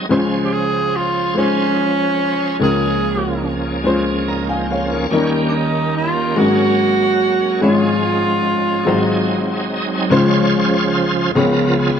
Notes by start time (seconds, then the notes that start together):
Already playing: G#3 D#4 F#4 D#5
0.09 C#2 C#3 E3 G#3 C#4 F4 G#4 C5
0.18 F3
0.45 G4
0.52 G#4
0.96 F4
1.34 G#3 C#4 F4 C5
2.59 C#2 C#3 F3 G#3 A#3 C#4 F4 G#4 A#4
3.84 G#3 C#4 F4 C5
4.28 A#4 D#5 A#5
4.49 C5 F5 G#5
4.70 C#5 F5
4.90 A#4 C#5
5.10 D#2 D#3 G3 A#3 C#4 D#4 G4
5.15 A#4
5.48 D4
5.55 D#4
5.97 F4
6.35 G#1 G#2 F#3 G#3 A#3 C#4 F#4 G#4 A#4
7.61 G#1 G#2 F3 G#3 C#4 F4 G#4 C#5
8.85 G#1 G#2 F#3 G#3 C4 D#4 G#4 C5
9.69 D#5
10.10 C#2 C#3 F3 G#3 C#4 F4 G#4 C5 C#5
11.35 C#2 C#3 F3 B3 F4 G#4 A#4 C#5
11.79 B3 F4 G#4